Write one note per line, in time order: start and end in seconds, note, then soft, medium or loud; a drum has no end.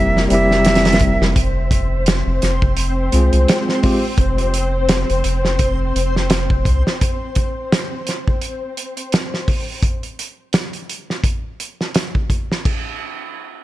0.00 0.27 F1 loud
0.00 0.27 G3 medium
0.00 1.37 A#3 medium
0.00 0.27 C4 medium
0.00 0.28 E4 medium
0.00 0.28 G4 medium
0.00 1.38 A#4 medium
0.00 0.25 E5 loud
0.17 snare soft
0.28 1.17 F1 loud
0.28 1.33 G3 medium
0.28 1.34 C4 medium
0.28 1.24 E5 loud
0.28 closed hi-hat medium
0.33 1.35 E4 medium
0.33 1.36 G4 loud
0.51 snare soft
0.65 snare medium
0.65 closed hi-hat medium
0.75 snare medium
0.75 closed hi-hat medium
0.85 snare medium
0.85 closed hi-hat medium
0.92 snare medium
0.92 closed hi-hat medium
0.99 kick loud
0.99 closed hi-hat medium
1.21 1.34 F1 medium
1.21 snare medium
1.36 2.23 F1 loud
1.36 7.02 C4 medium
1.36 9.85 C4 medium
1.36 7.02 C5 medium
1.36 9.85 C5 medium
1.36 kick loud
1.36 closed hi-hat medium
1.71 kick loud
1.71 closed hi-hat medium
2.06 snare loud
2.06 closed hi-hat medium
2.27 2.40 F1 medium
2.42 3.10 F1 loud
2.42 snare soft
2.42 closed hi-hat medium
2.62 kick medium
2.77 closed hi-hat medium
3.12 3.30 C2 medium
3.12 3.79 G#3 medium
3.12 3.80 C4 medium
3.12 3.80 F4 medium
3.12 3.81 G#4 medium
3.12 closed hi-hat medium
3.33 3.46 C2 medium
3.33 closed hi-hat soft
3.48 snare loud
3.48 closed hi-hat medium
3.69 snare soft
3.83 4.02 G#3 medium
3.83 4.03 C4 medium
3.83 4.03 F4 medium
3.83 4.04 G4 medium
3.83 kick loud
3.83 open hi-hat medium
4.18 5.05 F1 loud
4.18 kick loud
4.18 closed hi-hat medium
4.38 closed hi-hat soft
4.54 closed hi-hat medium
4.89 snare loud
4.89 closed hi-hat medium
5.10 5.23 F1 medium
5.10 closed hi-hat soft
5.24 5.92 F1 loud
5.24 closed hi-hat medium
5.45 snare soft
5.59 kick medium
5.59 closed hi-hat medium
5.95 6.63 F1 medium
5.95 closed hi-hat medium
6.16 snare soft
6.30 snare loud
6.30 closed hi-hat medium
6.50 kick medium
6.65 6.83 C2 medium
6.65 kick medium
6.65 closed hi-hat medium
6.87 snare medium
7.01 kick loud
7.01 closed hi-hat medium
7.35 kick medium
7.35 closed hi-hat medium
7.72 snare loud
7.72 closed hi-hat medium
8.07 snare soft
8.07 closed hi-hat medium
8.28 kick medium
8.41 closed hi-hat medium
8.77 closed hi-hat medium
8.97 closed hi-hat soft
9.12 snare loud
9.12 closed hi-hat medium
9.34 snare soft
9.48 kick medium
9.48 open hi-hat medium
9.83 kick medium
9.83 closed hi-hat medium
10.03 closed hi-hat soft
10.19 closed hi-hat medium
10.53 snare loud
10.53 closed hi-hat medium
10.73 closed hi-hat soft
10.89 closed hi-hat medium
11.10 snare soft
11.24 kick loud
11.24 closed hi-hat medium
11.60 closed hi-hat medium
11.81 snare soft
11.95 snare loud
11.95 closed hi-hat medium
12.15 kick medium
12.30 kick medium
12.30 closed hi-hat medium
12.52 snare medium
12.65 kick loud
12.65 crash medium